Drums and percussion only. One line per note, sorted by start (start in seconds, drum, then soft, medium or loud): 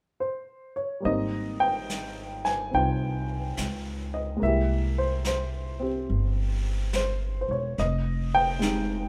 1.04 brush sweep soft
1.90 snare soft
1.90 hi-hat pedal soft
2.45 snare soft
2.74 brush sweep soft
3.57 snare soft
3.57 hi-hat pedal soft
4.41 brush sweep soft
5.25 snare soft
5.25 hi-hat pedal soft
6.09 brush sweep soft
6.93 snare soft
6.93 hi-hat pedal soft
7.78 brush sweep soft
7.78 snare soft
8.62 snare soft
8.62 hi-hat pedal soft